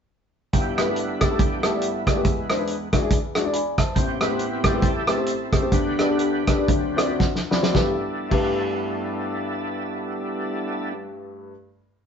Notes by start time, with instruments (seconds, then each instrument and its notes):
0.53 upright piano G1 G2, tonewheel organ G3 B3 E4 G4, kick, closed hi-hat
0.78 upright piano A3 E4 G4 B4, tonewheel organ D4 E4 B4, cross-stick, closed hi-hat
0.88 upright piano A3 E4 G4 B4
0.96 closed hi-hat
1.21 upright piano A3 E4 G4 A4, tonewheel organ A4, kick, cross-stick, closed hi-hat
1.31 upright piano A3 E4 G4 A4
1.38 tonewheel organ B3 E4 G4, kick, closed hi-hat
1.63 upright piano A3 E4 G4 A4, tonewheel organ A3 B3 E4, cross-stick, closed hi-hat
1.73 upright piano A3 E4 G4 D5
1.82 closed hi-hat
2.06 tonewheel organ G#3 B3 E4, upright piano A3 E4 G4 D5, kick, cross-stick, closed hi-hat
2.16 upright piano A3 E4 G4 B4
2.25 upright piano E2 E3, kick, closed hi-hat
2.50 upright piano G#3 D4 E4 C5, cross-stick, closed hi-hat
2.58 upright piano G#3 D4 E4 B4
2.67 closed hi-hat
2.93 tonewheel organ E3 G#3 D4, upright piano G#3 D4 E4 F#4, kick, cross-stick, closed hi-hat
3.02 upright piano G#3 D4 E4 G#4
3.11 kick, closed hi-hat
3.35 upright piano G#3 D4 E4 F#4, cross-stick, closed hi-hat
3.44 upright piano G#3 D4 E4 D5
3.53 upright piano D5 G#5 B5, closed hi-hat
3.78 upright piano C5 E5 A5, kick, cross-stick, closed hi-hat
3.95 upright piano A1 A2, tonewheel organ B3 C4 G4, kick, closed hi-hat
4.21 upright piano A3 C4 G4 B4, tonewheel organ E4 G4 B4, cross-stick, closed hi-hat
4.30 upright piano A3 C4 G4 C5
4.39 closed hi-hat
4.63 tonewheel organ A2 G3 C4 E4 A4, upright piano A3 C4 G4 C5, kick, cross-stick, closed hi-hat
4.73 upright piano A3 C4 G4 B4
4.82 kick, closed hi-hat
5.07 upright piano A3 C4 G4 B4, cross-stick, closed hi-hat
5.17 upright piano A3 C4 G4 C5
5.26 tonewheel organ C4 E4 A4, closed hi-hat
5.53 upright piano A3 C4 G4 C5, kick, cross-stick, closed hi-hat
5.62 upright piano A3 C4 G4 C5
5.71 upright piano D2 D3, tonewheel organ D3 B3 D4 G4 B4, kick, closed hi-hat
5.98 upright piano B3 D4 G4 D5, cross-stick, closed hi-hat
6.08 upright piano B3 D4 G4 A4
6.19 tonewheel organ D4 G4 B4, closed hi-hat
6.47 upright piano B3 D4 G4 A4, kick, cross-stick, closed hi-hat
6.58 upright piano B3 D4 G4 D5
6.68 upright piano D2 D3, tonewheel organ D3 F#3 C4, kick, closed hi-hat
6.97 upright piano C4 E4 F#4 D5, cross-stick, closed hi-hat
7.08 upright piano C4 E4 F#4 D5
7.19 upright piano F#5, kick, snare
7.35 snare
7.51 upright piano C4 E4 F#4 D5 B5, snare
7.62 upright piano C4 E4 F#4 D5, snare
7.72 upright piano G2 A3 E4 G4, tonewheel organ G3 B3 D4 E4 A4, kick, snare
7.76 upright piano B4
8.29 upright piano G2 A3 E4 G4 B4, kick, crash